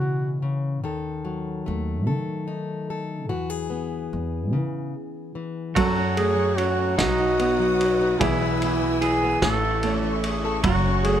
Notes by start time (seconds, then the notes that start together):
Already playing: C#3 E3 C#4 E4 F#4
0.01 B2
0.42 C#3
0.84 D#2 D#3 A4
1.25 F#3
1.66 D#2 A3
2.07 D#3 A4
2.48 D#4
2.90 A4
3.29 E2 E3 F#4
3.50 G#4
3.70 B3
4.13 E2
4.53 C#3 E3
5.35 E3
5.75 F#2 F#3 A3 F#4 A4 F#5 C#6, kick, ride
5.96 C#4
6.17 A3 G#4, ride
6.36 F#3
6.57 C#4 F#4, ride
6.78 C#4
6.97 B1 B2 F#3 D#4 F#4 B4 F#5 D#6, kick, snare, ride
7.20 D#4
7.39 B3, ride
7.59 F#3
7.81 ride
8.01 D#4
8.19 B1 B2 E3 B3 E4 G#4 G#5 E6, kick, ride
8.41 B3
8.62 B3, ride
8.83 E3
9.01 E4 G#4, ride
9.24 B3
9.42 A1 A2 E3 A3 A4 E5, kick, snare, ride
9.46 C#6
9.65 E4
9.83 A3 C#4, ride
10.03 E3
10.24 G#4, ride
10.45 A4
10.63 F#1 F#2 F#3 F#4 F#5, kick, ride
10.86 C#4
11.02 A3 G#4, ride